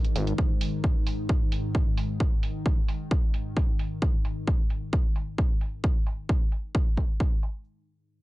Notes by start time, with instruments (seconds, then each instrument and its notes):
Already playing: ambient pad G#2 D#3
0.05 closed hi-hat
0.16 analog synth bass G#1, open hi-hat
0.27 closed hi-hat
0.38 kick
0.61 open hi-hat
0.84 kick
1.07 open hi-hat
1.29 kick
1.52 open hi-hat
1.75 kick
1.97 open hi-hat
2.20 kick
2.43 open hi-hat
2.66 kick
2.88 open hi-hat
3.11 kick
3.34 open hi-hat
3.57 kick, open hi-hat
3.79 open hi-hat
4.02 kick
4.25 open hi-hat
4.47 kick
4.70 open hi-hat
4.93 kick
5.16 open hi-hat
5.38 kick
5.61 open hi-hat
5.84 kick
6.07 open hi-hat
6.29 kick
6.52 open hi-hat
6.75 kick
6.97 kick, open hi-hat
7.20 kick, open hi-hat
7.43 open hi-hat